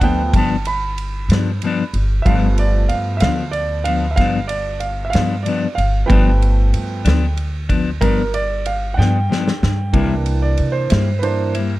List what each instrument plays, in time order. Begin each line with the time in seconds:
Already playing: upright bass D2
0.01 grand piano F3 A3 B3 G5, clean electric guitar F3 B3 D4, kick, ride
0.33 upright bass G1, clean electric guitar G2 F3, grand piano A5, kick, ride
0.38 clean electric guitar B3 D4
0.65 grand piano B5, ride
0.98 ride
1.29 upright bass G2, clean electric guitar D4, snare, ride
1.33 clean electric guitar F3 B3
1.62 clean electric guitar G2 F3 B3, ride
1.67 clean electric guitar D4
1.93 upright bass G1, ride
2.22 upright bass G1, grand piano F3 A3 B3 E5 F5, kick, ride
2.27 clean electric guitar G2 F3 B3 D4
2.58 grand piano D5, ride
2.89 upright bass G2, grand piano F5, ride
3.17 grand piano E5 F5, ride
3.21 upright bass D2, clean electric guitar D4, snare
3.26 clean electric guitar F3 B3
3.51 grand piano D5, ride
3.84 clean electric guitar B3 D4, grand piano F5, ride
3.88 clean electric guitar F3
4.11 grand piano E5
4.16 upright bass G1, clean electric guitar G2 F3, grand piano F5, kick, snare, ride
4.20 clean electric guitar B3 D4
4.48 grand piano D5, ride
4.80 grand piano F5, ride
5.05 grand piano E5
5.10 grand piano F5, ride
5.14 upright bass G2, clean electric guitar F3 B3 D4, snare
5.43 clean electric guitar G2, grand piano D5, ride
5.47 clean electric guitar F3 B3 D4
5.75 upright bass G1, grand piano F5, ride
6.06 upright bass G1, clean electric guitar G2 F3, grand piano F3 A3 B3 B4 G5, kick
6.10 clean electric guitar B3 D4, ride
6.42 ride
6.73 upright bass G2, ride
7.05 upright bass D2, clean electric guitar F3 B3 D4, snare, ride
7.37 ride
7.69 clean electric guitar F3 B3 D4, kick, ride
8.01 upright bass G1, clean electric guitar G2 F3 B3 D4, grand piano A#4, kick, ride
8.34 grand piano D5, ride
8.66 grand piano F5, ride
8.94 upright bass G2, clean electric guitar D4, grand piano F#5
8.99 clean electric guitar F3 B3, grand piano G5, snare
9.30 clean electric guitar G2 F3 B3 D4, snare
9.48 snare
9.63 upright bass G2, snare
9.93 upright bass C2, clean electric guitar C3 G3 A#3 E4, grand piano E3 A#3 D4, kick, ride
10.26 ride
10.42 grand piano D5
10.58 upright bass C3, ride
10.72 grand piano C5
10.90 upright bass G2, clean electric guitar G3 A#3 E4, snare, ride
11.19 grand piano E3 A#3 D4 B4, ride
11.23 grand piano C5
11.55 clean electric guitar A#3 E4, ride
11.59 clean electric guitar G3